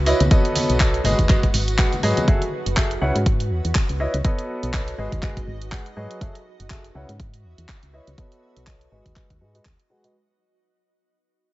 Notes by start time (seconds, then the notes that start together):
Already playing: C#2 F#4 B4 E5
0.06 E4 B4 C#5 D#5, open hi-hat, tambourine
0.20 C#2, closed hi-hat, tambourine, high conga
0.31 B3 A4 B4 C#5 D#5, kick, closed hi-hat, tambourine
0.45 closed hi-hat
0.56 open hi-hat, tambourine, high conga
0.66 D#5
0.70 B1, closed hi-hat, tambourine
0.80 A4 B4 C#5 D#5, kick, clap, closed hi-hat, tambourine
0.94 closed hi-hat
1.04 G#1 G#3 F#4 G#4 B4 D#5, open hi-hat, tambourine, high conga
1.19 D#2, kick, closed hi-hat, tambourine
1.29 F#1 G#3 F#4 G#4 B4 D#5, kick, clap, closed hi-hat, tambourine
1.43 kick, closed hi-hat
1.54 G#1, open hi-hat, tambourine
1.68 closed hi-hat, tambourine
1.78 G#3 F#4 G#4 B4 F#5, kick, clap, closed hi-hat
1.92 closed hi-hat, tambourine, high conga
2.03 G#2 F#3 F#4 G#4 B4 D#5, open hi-hat, tambourine
2.17 closed hi-hat, tambourine, high conga
2.28 F#1 F#3 F#4 G#4 A4 E5, kick, closed hi-hat
2.42 closed hi-hat
2.66 F#1, closed hi-hat
2.77 F#4 G#4 A4 E5, kick, clap, closed hi-hat
2.91 closed hi-hat
3.02 C#2 C#3 E4 B4 C#5 F#5
3.15 G#2, closed hi-hat
3.26 kick, closed hi-hat
3.40 closed hi-hat
3.51 E2
3.58 D#5
3.65 E2, closed hi-hat
3.75 kick, clap, closed hi-hat
3.89 C#2, closed hi-hat
4.00 E4 B4 C#5 D#5
4.14 C#2, closed hi-hat
4.25 B3 A4 B4 C#5 D#5, kick, closed hi-hat
4.39 closed hi-hat
4.63 B1, closed hi-hat
4.73 A4 B4 C#5 D#5, kick, clap, closed hi-hat
4.88 closed hi-hat
4.98 G#1 G#3 F#4 G#4 B4 D#5
5.12 D#2, kick, closed hi-hat
5.23 F#1 G#3 F#4 G#4 B4 D#5, kick, clap, closed hi-hat
5.37 kick, closed hi-hat
5.47 G#1
5.62 closed hi-hat
5.72 G#3 F#4 G#4 B4 F#5, kick, clap, closed hi-hat
5.86 closed hi-hat
5.97 G#2 F#3 F#4 G#4 B4 D#5
6.11 closed hi-hat
6.21 F#1 F#4 G#4 A4 E5, kick, closed hi-hat
6.35 closed hi-hat
6.56 E5
6.60 F#1, closed hi-hat
6.70 F#4 G#4 A4 E5, kick, clap, closed hi-hat
6.84 closed hi-hat
6.95 C#2 C#3 E4 B4 C#5 F#5
7.09 G#2, closed hi-hat
7.20 kick, closed hi-hat
7.34 closed hi-hat
7.44 E2
7.58 E2, closed hi-hat
7.68 kick, clap, closed hi-hat
7.83 C#2, closed hi-hat
7.93 E4 B4 C#5 D#5
8.07 C#2, closed hi-hat
8.18 B3 A4 B4 C#5 D#5, kick, closed hi-hat
8.32 closed hi-hat
8.52 D#5
8.57 B1, closed hi-hat
8.67 A4 C#5 D#5, kick, clap, closed hi-hat
8.81 closed hi-hat
8.92 G#1 G#3 F#4 G#4 B4 D#5
9.06 D#2, kick, closed hi-hat
9.16 G#3 F#4 G#4 B4 D#5, kick, clap, closed hi-hat
9.30 D#2, kick, closed hi-hat
9.41 G#2 G#3 F#4 G#4 B4 D#5
9.55 G#3 F#4 G#4 B4 D#5, closed hi-hat
9.65 D#2, kick, clap, closed hi-hat
9.79 closed hi-hat
9.90 G#3 F#4 G#4 B4 F#5
10.04 G#3 F#4 G#4 B4 D#5, closed hi-hat